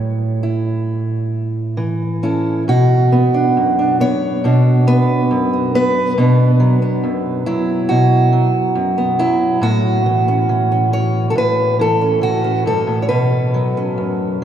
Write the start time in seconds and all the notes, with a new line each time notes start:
Already playing: A2 E4 C#5
0.43 E4
1.77 E3
2.23 C#4 E4 A4
2.68 B2 F#4
3.12 B3
3.34 D4
3.57 F#2
3.79 D4
4.00 B3 C#5
4.44 B2 D4 F#4
4.87 B3 B4
5.31 F#2
5.53 F#4
5.75 B3 B4
6.18 B2 B3 D4
6.60 F#3
6.82 B3
7.04 F#2
7.46 F#3 E4
7.89 B2 F#4
8.32 F#3
8.75 F#2
8.98 B3
9.19 F#3 E4
9.62 A2 F#4
10.06 E3
10.28 C#4
10.49 E3
10.72 C#4
10.93 E3 C#5
11.30 A4
11.35 A2 B4
11.79 E3 A4
12.01 C#4
12.21 E3 F#4
12.44 C#4
12.66 G2 A4
12.87 A2
13.02 C#5
13.09 B2 B4
13.54 F#3
13.77 C#4
13.98 F#2